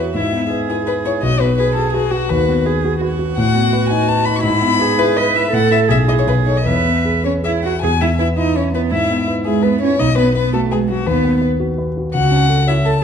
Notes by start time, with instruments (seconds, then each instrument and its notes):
Already playing: grand piano E2 B3 E4 B4, cello F#4
0.14 grand piano G#2, cello E4, violin E5
0.33 grand piano B3
0.50 cello G#4, grand piano B4
0.68 grand piano E4, violin G#4
0.86 grand piano B4, violin B4
1.05 grand piano E4, violin C#5
1.22 grand piano B1, cello F#4, violin D#5
1.40 grand piano B3, violin B4
1.58 cello G#4, violin B4, grand piano B4
1.75 grand piano F#4, violin A4
1.93 cello F#4, violin G#4, grand piano B4
2.11 grand piano F#4, violin F#4
2.29 grand piano D#2, violin B4
2.48 grand piano B3
2.66 cello G#4, grand piano B4
2.84 grand piano F#4
3.01 cello F#4, grand piano B4
3.19 grand piano F#4
3.37 grand piano A2, violin F#5
3.55 grand piano B3
3.73 grand piano B4
3.90 grand piano D#4, violin G#5
4.08 grand piano B4, violin A5
4.25 grand piano D#4, violin B5
4.36 violin C#6
4.43 grand piano G#2, cello E4, violin B5
4.62 grand piano B3
4.79 cello G#4, grand piano B4
4.98 grand piano E4, violin B4
5.16 grand piano B4, cello B4, violin D#5
5.35 grand piano E4, violin E5
5.52 grand piano A2, cello A4, violin F#5
5.71 grand piano E4 A4, violin E5
5.88 grand piano B1, cello G#4, violin E5
6.07 grand piano E4 G#4, violin D#5
6.18 violin C#5
6.27 grand piano B1, violin B4
6.46 grand piano D#4 A4, violin C#5
6.57 violin D#5
6.65 grand piano E2, cello B4, violin E5
6.85 grand piano B3
7.05 grand piano G#4
7.24 cello C#4, grand piano B4, violin C#5
7.43 cello E4, grand piano G#4, violin E5
7.63 grand piano E4, cello F#4, violin F#5
7.82 grand piano E2, cello G#4, violin G#5
8.01 grand piano B3, cello E4, violin E5
8.19 cello E4, grand piano B4, violin E5
8.38 cello D#4, grand piano E4, violin D#5
8.55 cello C#4, grand piano B4, violin C#5
8.74 cello B3, grand piano E4, violin B4
8.91 grand piano G#2, cello E4, violin E5
9.10 grand piano B3
9.28 grand piano B4
9.45 cello G#3, grand piano E4, violin G#4
9.63 cello B3, violin B4, grand piano B4
9.81 cello C#4, grand piano E4, violin C#5
9.99 grand piano B1, cello D#4, violin D#5
10.17 grand piano B3, cello B3, violin B4
10.35 cello B3, grand piano B4, violin B4
10.53 cello A3, grand piano F#4, violin A4
10.71 cello G#3, violin G#4, grand piano B4
10.89 cello F#3, violin F#4, grand piano F#4
11.07 grand piano D#2, cello B3, violin B4
11.24 grand piano B3
11.42 grand piano B4
11.60 grand piano F#4
11.78 grand piano B4
11.98 grand piano F#4
12.14 grand piano C#2, cello F#4, violin F#5
12.31 grand piano C#4
12.49 grand piano A4
12.67 cello E4, grand piano C#5, violin E5
12.85 cello A4, grand piano A4, violin A5